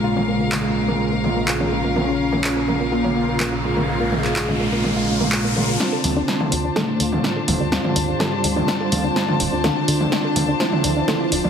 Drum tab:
HH |----------------|----------------|----------------|--o---o---o---o-|
CP |----x-------x---|----x-------x---|---xx-------x---|----------------|
SD |----------------|----------------|----------------|o---o---o---o---|
T2 |-o--o--o--o--o--|o--o--o--o--o--o|--o--o--o--o--o-|--o--o--o--o--o-|

HH |--o---o---o---o-|--o---o---o---o-|
CP |----------------|----------------|
SD |o---o---o---o---|o---o---o---o---|
T2 |-o--o--o--o--o--|o--o--o--o--o--o|